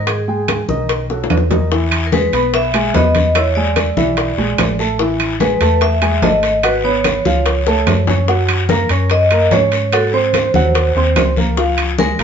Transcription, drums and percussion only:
0.07 high bongo, high conga, high timbale, claves
0.28 high conga
0.48 high bongo, high conga, high timbale, low timbale, claves
0.69 high bongo, high conga
0.89 high bongo, high conga, high timbale
1.10 high bongo, high conga
1.24 low bongo
1.30 high conga, high timbale, claves
1.37 low bongo
1.51 low bongo, high conga, low timbale
1.71 high bongo, high conga, long guiro
1.91 high conga, high timbale, claves
2.12 high bongo, high conga, low timbale, short guiro
2.33 high bongo, high timbale, short guiro
2.53 high bongo, high conga, high timbale, long guiro
2.74 high bongo, high conga, high timbale, claves
2.94 high bongo, low bongo, high conga, low timbale, short guiro
3.15 high bongo, high conga, high timbale, short guiro
3.35 high bongo, high conga, high timbale, long guiro, claves
3.56 high conga
3.76 high bongo, high conga, high timbale, low timbale, short guiro, claves
3.97 high bongo, high conga, short guiro
4.17 high bongo, high conga, high timbale, long guiro
4.38 high bongo, high conga
4.58 high bongo, low bongo, high conga, high timbale, low timbale, short guiro, claves
4.79 high bongo, short guiro
4.99 high bongo, high conga, long guiro
5.20 high conga, high timbale, claves
5.40 high bongo, high conga, low timbale, short guiro
5.61 high bongo, high timbale, short guiro
5.81 high bongo, high conga, high timbale, long guiro
6.02 high bongo, high conga, high timbale, claves
6.22 high bongo, low bongo, high conga, low timbale, short guiro
6.43 high bongo, high timbale, short guiro
6.63 high bongo, high conga, high timbale, long guiro, claves
6.84 high conga
7.04 high bongo, high conga, high timbale, low timbale, short guiro, claves
7.25 high bongo, high conga, short guiro
7.46 high bongo, high conga, high timbale, long guiro
7.67 high bongo, high conga
7.87 high conga, high timbale, low timbale, short guiro, claves
8.07 low bongo, high conga, short guiro
8.28 high bongo, high conga, long guiro
8.48 high conga, high timbale, claves
8.69 high bongo, high conga, low timbale, short guiro
8.89 high bongo, high timbale, short guiro
9.10 high bongo, high conga, high timbale, long guiro
9.31 high bongo, high conga, high timbale, claves
9.51 high bongo, low bongo, high conga, low timbale, short guiro
9.72 high bongo, high timbale, short guiro
9.92 high bongo, high conga, high timbale, long guiro, claves
10.13 high conga
10.33 high bongo, high conga, high timbale, low timbale, short guiro, claves
10.54 high bongo, high conga, short guiro
10.74 high bongo, high conga, high timbale, long guiro
10.95 high bongo, high conga
11.16 high bongo, low bongo, high conga, high timbale, low timbale, short guiro, claves
11.36 high bongo, high conga, short guiro
11.57 high bongo, high conga, long guiro
11.78 high conga, high timbale, claves
11.98 high bongo, high conga, low timbale, short guiro
12.19 high bongo, high timbale, short guiro

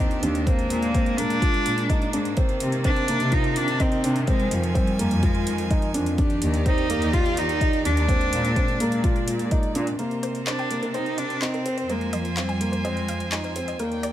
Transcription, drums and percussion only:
0.11 closed hi-hat
0.23 closed hi-hat
0.35 closed hi-hat
0.47 kick, closed hi-hat
0.59 closed hi-hat
0.70 closed hi-hat
0.83 closed hi-hat
0.94 kick, closed hi-hat
1.06 closed hi-hat
1.18 closed hi-hat
1.30 closed hi-hat
1.42 kick, closed hi-hat
1.54 closed hi-hat
1.66 closed hi-hat
1.78 closed hi-hat
1.90 kick, closed hi-hat
2.02 closed hi-hat
2.13 closed hi-hat
2.25 closed hi-hat
2.37 kick, closed hi-hat
2.49 closed hi-hat
2.60 closed hi-hat
2.72 closed hi-hat
2.84 kick, closed hi-hat
2.96 closed hi-hat
3.08 closed hi-hat
3.20 closed hi-hat
3.32 kick, closed hi-hat
3.44 closed hi-hat
3.56 closed hi-hat
3.68 closed hi-hat
3.80 kick, closed hi-hat
3.92 closed hi-hat
4.04 closed hi-hat
4.16 closed hi-hat
4.27 kick, closed hi-hat
4.40 closed hi-hat
4.51 closed hi-hat
4.64 closed hi-hat
4.75 kick, closed hi-hat
4.87 closed hi-hat
4.99 closed hi-hat
5.11 closed hi-hat
5.23 kick, closed hi-hat
5.35 closed hi-hat
5.47 closed hi-hat
5.58 closed hi-hat
5.71 kick, closed hi-hat
5.82 closed hi-hat
5.94 closed hi-hat
6.06 closed hi-hat
6.18 kick, closed hi-hat
6.30 closed hi-hat
6.42 closed hi-hat
6.54 closed hi-hat
6.66 kick, closed hi-hat
6.78 closed hi-hat
6.90 closed hi-hat
7.02 closed hi-hat
7.13 kick, closed hi-hat
7.26 closed hi-hat
7.37 closed hi-hat
7.49 closed hi-hat
7.61 kick, closed hi-hat
7.73 closed hi-hat
7.85 closed hi-hat
7.97 closed hi-hat
8.08 kick, closed hi-hat
8.21 closed hi-hat
8.33 closed hi-hat
8.45 closed hi-hat
8.56 kick, closed hi-hat
8.68 closed hi-hat
8.80 closed hi-hat
8.92 closed hi-hat
9.04 kick, closed hi-hat
9.16 closed hi-hat
9.28 closed hi-hat
9.39 closed hi-hat
9.51 kick, closed hi-hat
9.63 closed hi-hat
9.75 closed hi-hat
9.87 closed hi-hat
9.99 closed hi-hat
10.11 closed hi-hat
10.23 closed hi-hat
10.35 closed hi-hat
10.47 clap, closed hi-hat
10.59 closed hi-hat
10.71 closed hi-hat
10.83 closed hi-hat
10.94 closed hi-hat
11.06 closed hi-hat
11.18 closed hi-hat
11.30 closed hi-hat
11.42 clap, closed hi-hat
11.54 closed hi-hat
11.66 closed hi-hat
11.78 closed hi-hat
11.90 closed hi-hat
12.01 closed hi-hat
12.13 closed hi-hat
12.25 closed hi-hat
12.37 clap, closed hi-hat
12.49 closed hi-hat
12.61 closed hi-hat
12.73 closed hi-hat
12.85 closed hi-hat
12.97 closed hi-hat
13.08 closed hi-hat
13.20 closed hi-hat
13.32 clap, closed hi-hat
13.44 closed hi-hat
13.56 closed hi-hat
13.68 closed hi-hat
13.79 closed hi-hat
13.92 closed hi-hat
14.03 closed hi-hat

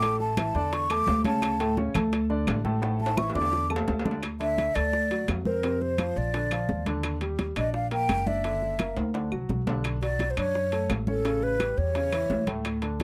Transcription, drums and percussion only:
0.02 high bongo, high conga, high timbale
0.20 high bongo, high conga
0.37 high bongo, high conga, high timbale, low timbale, claves
0.55 high conga
0.72 high bongo, high conga, high timbale
0.89 high bongo, high conga, high timbale, claves
1.07 high bongo, low bongo, high conga, low timbale
1.24 high bongo, high conga, high timbale
1.42 high bongo, high conga, high timbale, claves
1.60 high bongo, high conga, high timbale
1.77 high bongo, high conga, low timbale
1.94 high bongo, high conga, low conga, high timbale, claves
2.12 high bongo, high conga, high timbale
2.30 high conga
2.47 high bongo, low bongo, high conga, high timbale, low timbale, claves
2.65 high bongo, high conga
2.82 high bongo, high conga, high timbale
3.00 high bongo, high conga
3.06 high timbale
3.17 high bongo, high conga, claves
3.30 low timbale
3.35 high bongo, high conga
3.42 low timbale
3.53 high bongo, high conga
3.70 low bongo, high conga, claves
3.76 low timbale
3.88 low bongo, high conga, low timbale
3.99 low timbale
4.05 low bongo, high conga
4.11 low timbale
4.23 high bongo, high conga, high timbale, claves
4.41 high bongo, high conga, high timbale
4.58 high bongo, high conga, high timbale
4.75 high conga, high timbale, claves
4.93 high bongo, high conga
5.11 high bongo, high conga, high timbale
5.28 high bongo, low bongo, high conga, high timbale, low timbale, claves
5.45 high bongo, high conga
5.63 high bongo, high conga, high timbale
5.81 high bongo, high conga
5.98 high bongo, high conga, high timbale, claves
6.34 high bongo, high conga, high timbale
6.51 high bongo, high conga, high timbale, claves
6.69 high bongo, low bongo, high conga
6.86 high bongo, high conga, high timbale
7.03 high bongo, high conga, high timbale, claves
7.21 high bongo, high conga, high timbale
7.39 high bongo, high conga, high timbale
7.56 high conga, high timbale, claves
7.74 high bongo, high conga
7.91 high bongo, high conga, high timbale
8.09 high bongo, low bongo, high conga, high timbale, claves
8.27 high bongo, high conga
8.44 high bongo, high conga, high timbale
8.62 high bongo, high conga
8.79 high bongo, high conga, high timbale, claves
8.97 high timbale
9.14 high bongo, high conga, high timbale
9.32 high bongo, high conga, claves
9.49 high bongo, low bongo, high conga
9.67 high bongo, high conga, low timbale
9.84 high bongo, high conga, high timbale, claves
10.02 high bongo, high conga, high timbale
10.19 high bongo, high conga, high timbale
10.37 high conga, high timbale, claves
10.55 high bongo, high conga
10.72 high bongo, high conga, high timbale
10.90 high bongo, low bongo, high conga, high timbale, low timbale, claves
11.07 high bongo, high conga
11.25 high bongo, high conga, high timbale
11.42 high bongo, high conga
11.60 high bongo, high conga, high timbale, claves
11.95 high bongo, high conga, high timbale
12.12 high bongo, high conga, high timbale, claves
12.30 high bongo, low bongo, high conga, low timbale
12.47 high bongo, high conga, high timbale
12.65 high bongo, high conga, high timbale, claves
12.82 high bongo, high conga, high timbale
13.00 high conga, high timbale

